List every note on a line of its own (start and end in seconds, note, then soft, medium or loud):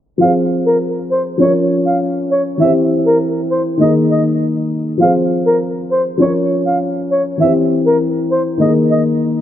0.18 1.36 F3 medium
0.18 1.38 C4 medium
0.18 0.32 F5 medium
0.22 1.39 G#4 medium
0.22 1.40 C5 medium
0.66 0.77 A#4 medium
1.11 1.22 C5 medium
1.38 2.57 F3 medium
1.38 2.58 C#4 medium
1.38 1.52 C#5 medium
1.42 2.59 A#4 medium
1.42 2.60 C#5 medium
1.86 1.97 F5 medium
2.31 2.42 C#5 medium
2.58 3.77 E3 medium
2.58 3.78 C4 medium
2.58 2.72 E5 loud
2.62 3.79 G4 medium
2.62 3.80 C5 medium
3.06 3.17 A#4 medium
3.50 3.62 C5 medium
3.77 4.97 D#3 medium
3.77 4.98 A#3 medium
3.77 3.92 D#5 medium
3.82 4.99 G#4 medium
3.82 5.00 A#4 medium
4.11 4.22 D#5 medium
4.98 6.16 F3 medium
4.98 6.18 C4 medium
4.98 5.12 F5 medium
5.02 6.19 G#4 medium
5.02 6.20 C5 medium
5.46 5.57 A#4 medium
5.91 6.02 C5 medium
6.18 7.37 F3 medium
6.18 7.38 C#4 medium
6.18 6.32 C#5 medium
6.22 7.39 A#4 medium
6.22 7.40 C#5 medium
6.66 6.77 F5 medium
7.11 7.22 C#5 medium
7.38 8.57 E3 medium
7.38 8.58 C4 medium
7.38 7.52 E5 medium
7.42 8.59 G4 medium
7.42 8.60 C5 medium
7.85 7.97 A#4 medium
8.31 8.42 C5 medium
8.58 9.41 D#3 medium
8.58 9.41 A#3 medium
8.58 8.72 D#5 medium
8.62 9.41 G#4 medium
8.62 9.41 A#4 medium
8.90 9.02 D#5 medium